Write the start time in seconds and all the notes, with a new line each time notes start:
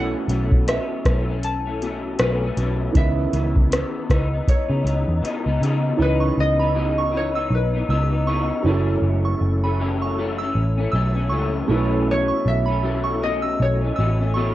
Already playing: B1 B2 E3 A3 C#4 E4 A4 B4 C#5 F#5
0.29 B1 B2 E3 A3 C#4, closed hi-hat
0.52 kick
0.67 B2 E3 A3 C#4 E5, cross-stick, closed hi-hat
1.05 B1 B2 E3 A3 C#4, kick, cross-stick, closed hi-hat
1.28 E3 A3 C#4
1.43 A5, closed hi-hat
1.65 E3 A3 C#4
1.80 B2 E3 A3, closed hi-hat
1.85 C#4
2.19 B1 B2 E3 A3 C#4 B4, cross-stick, closed hi-hat
2.42 A3 C#4
2.46 E3
2.57 B1 B2 E3 A3 C#4, closed hi-hat
2.92 C#2 C#3 D#3 E3 C#4, kick, closed hi-hat
2.96 E3 B3 B4 E5
3.33 C#2 C#3 E3 B3, closed hi-hat
3.56 kick
3.71 C#3 E3 B3, cross-stick, closed hi-hat
4.09 C#2 C#3 E3 B3 D#4, kick, cross-stick, closed hi-hat
4.31 E3 B3 D#4
4.48 C#5, kick, closed hi-hat
4.68 C#3 B3 D#4
4.73 E3
4.84 C#2 C#3 E3 B3 D#4, closed hi-hat
5.08 E2
5.22 C#3 E3 B3 D#4, muted picked electric bass stroke, closed hi-hat
5.45 C#2 E3 B3 D#4
5.61 C#3 E3 B3 D#4, closed hi-hat
5.97 C#2 C#3 E3 C#4 D#4
6.01 B3 D#4 B4
6.20 C#6
6.38 C#2 D#5
6.59 E3 B3 D#4 B5
6.75 C#3 E3 B3 D#4
6.98 C#6
7.12 C#3 E3 B3 D#4
7.17 C#5
7.34 E3 B3 D#4 E6
7.51 B1
7.55 B4
7.74 E3 B3 D#4
7.88 C#2 C#3 E3 B3 D#4 E6
8.11 E3 B3 D#4
8.26 C#3 E3 B3 D#4 C#6
8.62 F#1 F#2 E3 F#3 A3 C#4 E4
8.67 C#4 A4
9.02 F#1
9.25 C#6
9.41 F#1
9.64 E3 A3 C#4 B5
9.79 F#2 E3 A3 C#4
10.02 C#6
10.17 F#2 E3 A3 C#4
10.38 A3 C#4 E6
10.43 E3
10.55 A1
10.78 A3 C#4
10.82 E3
10.92 B1 F#2 E3 A3 E6
10.96 C#4
11.15 A3 C#4
11.19 E3
11.30 C#2 F#2 E3 A3 C#4 C#6
11.68 B1 B2 E3 A3 C#4 E4
11.73 B4
12.11 C#5
12.28 C#6
12.46 B1 E5
12.66 C#4 B5
12.70 E3 A3
12.82 B2 E3 A3 C#4
13.04 C#6
13.21 B2 E3 A3 C#4 D#5
13.42 E6
13.60 B1 C#5
13.81 A3 C#4
13.85 E3
13.96 A1 B2 E3 A3 E6
14.00 C#4
14.20 E3 A3 C#4
14.34 B2 E3 A3 C#4 C#6